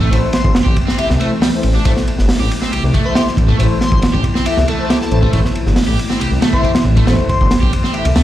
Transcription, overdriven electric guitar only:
0.00 A3
0.11 A3
0.65 G4
0.87 C4
0.98 G4
1.20 A3
1.41 G3
1.75 D4
1.85 A3
2.40 G4
2.61 C4
2.72 G4
2.94 A3
3.15 G4
3.48 A3
3.59 A3
4.14 G4
4.35 C4
4.46 G4
4.68 A3
4.90 G4
5.22 A3
5.33 A3
5.88 G4
6.09 C4
6.20 G4
6.41 A3
6.63 G4
6.97 A3
7.07 A3
7.61 G4
7.83 C4
7.93 G4
8.15 A3

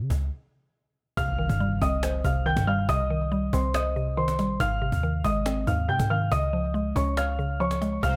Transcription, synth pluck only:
1.17 C3
1.38 D#3
1.60 G3
1.81 C4
2.03 C5
2.25 C3
2.46 D#3
2.67 G3
2.89 C3
3.10 D#3
3.32 G3
3.53 C4
3.75 C5
3.96 C3
4.17 D#3
4.39 G3
4.60 G#2
4.82 C3
5.03 D#3
5.24 G#3
5.46 C4
5.67 G#2
5.88 C3
6.10 D#3
6.31 C#3
6.53 F3
6.74 G#3
6.96 C#4
7.17 C#5
7.39 C#3
7.60 F3
7.82 G#3
8.03 C3

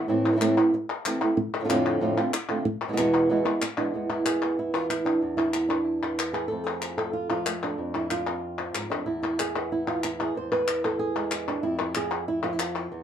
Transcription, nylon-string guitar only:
0.08 A2 E3 A3 C4 E4
0.32 E3 A3 C4 E4
0.36 E3 A3 C4 E4
0.41 A2 E3 A3 C4 E4
0.57 A3 C4 E4
0.74 muted nylon-string guitar stroke
1.06 E3 A3 C4 E4
1.21 A3 C4 E4
1.37 muted nylon-string guitar stroke
1.60 A2 D3 A3 C4 F4
1.64 A2 D3 A3 C4 F4
1.69 F2 A2 D3 A3 C4 F4
2.01 F2 A2 D3 A3 C4 F4
2.17 D3 A3 C4 F4
2.33 muted nylon-string guitar stroke
2.49 D3 A3 C4 F4
2.65 muted nylon-string guitar stroke
2.88 B2 E3 G#3 B3 E4
2.93 B2 E3 G#3 B3 E4
2.97 E2 B2 E3 G#3 B3 E4
3.29 E2 B2 E3 G#3 B3 E4
3.45 E3 G#3 B3 E4
3.62 muted nylon-string guitar stroke
3.78 E3 G#3 B3 D4 E4
3.93 E2 E3 G#3 B3 E4
4.10 E4
4.26 G#4
4.43 B3
4.59 E4
4.74 E3 F4
4.90 E4
5.05 D4
5.21 E2 E4
5.37 E4
5.55 B3
5.68 D4
5.84 E4
6.02 E3
6.33 G#4
6.48 F2 F3 A3 A4
6.52 C4
6.64 G#4
6.98 A4
7.13 F4
7.30 F3 F4
7.47 A3
7.63 D4
7.78 F2
7.95 E4
8.12 F4
8.28 C4
8.60 F3
8.75 G#2
8.90 F2 D4
9.06 E2 E4
9.23 E4
9.40 G#4
9.55 B3
9.72 E4
9.87 E3 F4
10.04 E4
10.21 G#4
10.35 E2 C5
10.52 B4
10.68 E4
10.85 A4
10.99 G#4
11.15 G#3
11.33 E4
11.48 D4
11.63 F2 E4
11.80 E4
11.97 G#4
12.28 E4
12.43 F3 F4
12.53 E4
12.59 F4
12.75 E4
12.92 E2 B3

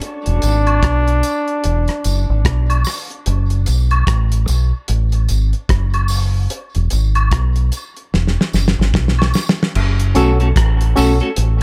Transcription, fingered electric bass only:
0.27 E1
0.43 G#1
0.83 B1
1.65 E1
2.05 F#1
2.30 G#1
2.46 B1
3.27 F#1
3.68 B1
4.07 A1
4.49 B1
4.89 A1
5.30 G#1
5.70 F#1
6.76 E1
6.92 G#1
7.32 B1
8.14 E1
8.54 F#1
8.79 G#1
8.94 B1
9.76 F#1
10.16 B1
10.56 A1
10.98 B1
11.38 A1

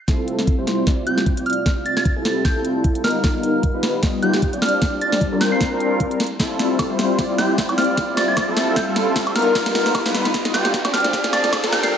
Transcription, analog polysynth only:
0.08 G3 C4 E4 F4 A4
0.58 G3 C4 E4 F4 C5
0.87 G3 C4 E4 F4 D5
1.06 G3 C4 E4 F4 G4
1.37 G3 C4 E4 F4 D5
2.16 G3 C4 E4 F4 A4
2.56 G3 C4 E4 F4 A4
3.04 G3 B3 D#4 F4 A#4
3.24 G3 B3 D#4 F4 A#4
3.74 G3 B3 D#4 F4 B4
4.03 G3 B3 D#4 F4 D#5
4.22 G3 B3 D#4 F4 G4
4.53 G3 C4 D4 F4 D5
5.32 G3 C4 D4 F4 A#4
5.72 G3 C4 D4 F4 A#4
6.40 G3 C4 E4 F4 A4
6.90 G3 C4 E4 F4 C5
7.18 G3 C4 E4 F4 D5
7.38 G3 C4 E4 F4 G4
7.69 G3 C4 E4 F4 D5
8.48 G3 C4 E4 F4 A4
8.87 G3 C4 E4 F4 A4
9.35 G3 B3 D#4 F4 A#4
9.55 G3 B3 D#4 F4 A#4
10.05 G3 B3 D#4 F4 B4
10.34 G3 B3 D#4 F4 D#5
10.54 G3 B3 D#4 F4 G4
10.84 G3 C4 D4 F4 D5
11.64 G3 C4 D4 F4 A#4

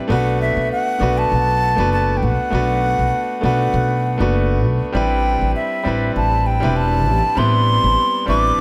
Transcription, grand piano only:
Already playing: G3 C4 D4 E4 B4
0.08 A3 B3 D4 F#4
0.12 B4
0.99 A3 B3 D4 F#4
1.03 B4
1.76 A3 B3 D4 F#4
1.80 B4
2.50 A3 B3 D4 F#4
2.55 B4
3.41 A3 B3 D4 F#4
3.45 B4
4.18 A3 B3 D4 F#4 B4
4.92 G3 C4 D4 E4
4.97 B4
5.83 G3 C4 D4 E4 B4
6.60 G3 C4 D4 E4
6.64 B4
7.35 G3 B3 C4 D4 E4
8.26 G3 C4 D4 E4
8.30 B4

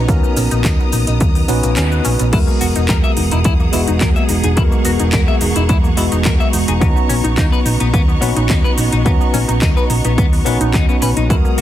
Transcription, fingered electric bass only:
0.09 D#2
0.37 A#1
0.52 A#1
0.65 D#2
0.93 A#1
1.08 A#1
1.21 D#2
1.49 A#1
1.64 A#1
1.77 D#2
2.05 A#1
2.20 A#1
2.33 E2
2.62 E1
2.76 E1
2.89 E2
3.17 E1
3.32 E1
3.45 E2
3.73 E1
3.88 E1
4.01 E2
4.29 E1
4.44 E1
4.57 E2
4.85 E1
5.00 E1
5.13 E2
5.41 E1
5.56 E1
5.69 E2
5.97 E1
6.12 E1
6.25 E2
6.53 E1
6.68 E1
6.82 D#2
7.09 A#1
7.24 A#1
7.38 D#2
7.66 A#1
7.81 A#1
7.94 D#2
8.22 A#1
8.36 A#1
8.50 D#2
8.78 A#1
8.93 A#1
9.06 D#2
9.34 A#1
9.49 A#1
9.62 D#2
9.90 A#1
10.05 A#1
10.18 D#2
10.46 A#1
10.61 A#1
10.74 D#2
11.02 A#1
11.17 A#1
11.30 E2

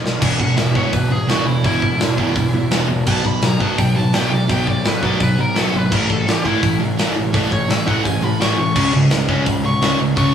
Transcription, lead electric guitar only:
0.22 G#5
0.40 F#5
0.58 E5
0.76 C#5
0.93 B4
1.12 G#4
1.30 F#4
1.48 E4
1.66 E4
3.07 A5
3.27 B5
3.45 A#5
3.61 A5
3.79 G5
3.96 A5
4.14 G5
4.33 D5
4.51 G5
4.69 D5
4.87 B4
5.03 D5
5.23 B4
5.41 A#4
5.59 A4
5.77 B4
5.94 A#4
6.12 A4
6.30 G4
6.47 E4
7.53 C#5
7.70 E5
7.87 F#5
8.04 G#5
8.23 B5
8.41 C#6
8.60 C#6
9.66 C#6
10.17 C#6

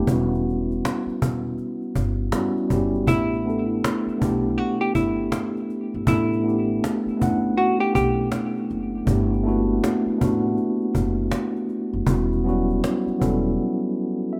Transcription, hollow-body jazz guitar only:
3.08 E4
4.58 F#4
4.81 G4
4.95 E4
6.08 E4
7.57 F#4
7.80 G4
7.95 G4

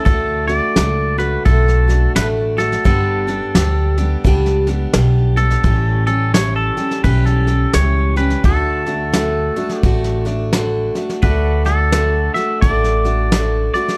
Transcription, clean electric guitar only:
0.05 A4
0.48 D5
1.19 B4
1.45 A4
2.16 B4
2.58 A4
2.86 A4
5.37 A4
6.07 A4
6.34 C#5
6.56 A4
7.04 B4
7.26 A4
7.75 C#5
8.17 B4
8.45 A4
9.78 G4
11.23 B4
11.66 A4
12.34 E5
12.61 D5
13.74 D5

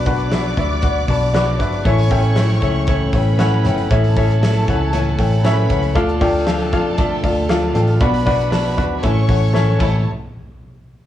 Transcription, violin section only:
Already playing: D5 D6
1.85 C#5 C#6
3.14 B4 B5
3.90 A4 A5
5.43 B4 B5
5.95 A4 A5
8.01 B4 B5
9.04 C#5 C#6
9.79 E4 C#5 A5

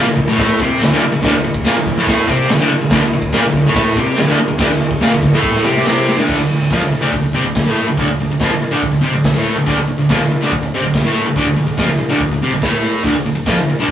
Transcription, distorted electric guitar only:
0.06 D2
0.17 D2
0.28 A2 A3
0.60 C3 C4
0.81 D2
0.92 D2 D3
1.03 muted distorted electric guitar stroke
1.12 D2
1.22 D2 D3
1.35 D2
1.44 D2
1.64 A#2 A#3
1.76 D2
1.88 D2
1.98 A2 A3
2.28 C3 C4
2.50 D2
2.59 D2 D3
2.70 muted distorted electric guitar stroke
2.82 D2
2.91 D2 D3
3.02 D2
3.13 D2
3.33 A#2 A#3
3.46 D2
3.56 D2
3.66 A2 A3
3.97 C3 C4
4.17 D2
4.27 D2 D3
4.40 muted distorted electric guitar stroke
4.48 D2
4.58 D2 D3
4.69 D2
4.81 D2
5.01 A#2 A#3
5.11 D2
5.23 D2
5.34 A2 A3
5.65 C3 C4
5.87 C3 C4
6.17 D2 D3
6.28 D2 D3
6.39 D2
6.50 D2
6.61 D2
6.71 F2 F3
6.83 D2
6.92 muted distorted electric guitar stroke
7.01 D2 D3
7.12 D2
7.23 D2
7.34 C3 C4
7.43 D2
7.56 D2
7.67 A2 A3
7.88 D2
7.98 D2 D3
8.10 D2
8.20 D2
8.31 D2
8.40 F2 F3
8.51 D2
8.61 muted distorted electric guitar stroke
8.71 D2 D3
8.83 D2
8.92 D2
9.01 C3 C4
9.14 D2
9.24 D2
9.34 A2 A3
9.57 D2
9.66 D2 D3
9.78 D2
9.88 D2
9.98 D2
10.09 F2 F3
10.20 D2
10.32 muted distorted electric guitar stroke
10.41 D2 D3
10.52 D2
10.63 D2
10.74 C3 C4
10.83 D2
10.95 D2
11.04 A2 A3
11.27 D2
11.37 D2 D3
11.47 D2
11.57 D2
11.67 D2
11.77 F2 F3
11.88 D2
11.98 muted distorted electric guitar stroke
12.09 D2 D3
12.21 D2
12.31 D2
12.42 C3 C4
12.54 D2
12.63 A2 A3
13.04 D2 D3
13.16 D2
13.26 D2
13.35 D2
13.46 F2 F3
13.58 D2
13.70 muted distorted electric guitar stroke
13.79 D2 D3

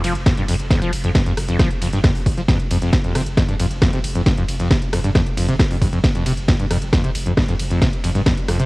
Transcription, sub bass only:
0.04 F1
0.15 F1
0.37 F1
0.48 F1
0.60 F1
0.82 F1
0.93 F1
1.04 F1
1.26 F1
1.37 F1
1.48 F1
1.71 F1
1.82 F1
1.93 F1
2.15 F1
2.26 F1
2.37 F1
2.60 F1
2.71 F1
2.82 F1
3.04 F1
3.15 F1
3.26 F1
3.48 F1
3.60 F1
3.71 F1
3.93 F1
4.04 F1
4.15 F1
4.37 F1
4.48 F1
4.60 F1
4.82 F1
4.93 F1
5.04 F1
5.26 F1
5.37 F1
5.48 F1
5.71 F1
5.82 F1
5.93 F1
6.15 F1
6.26 F1
6.37 F1
6.60 F1
6.71 F1
6.82 F1
7.04 F1
7.15 F1
7.26 F1
7.48 F1
7.60 F1
7.71 F1
7.93 F1
8.04 F1
8.15 F1
8.37 F1
8.49 F1
8.60 F1

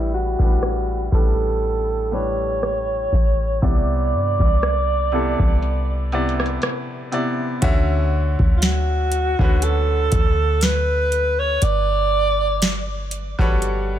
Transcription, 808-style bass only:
Already playing: A1
0.39 A1
1.12 A1
3.13 A1
3.62 C2
4.13 G2
4.40 C2
5.39 C2
7.62 D2
8.39 D2
9.39 D2
10.12 D2
11.62 G1
13.39 G1

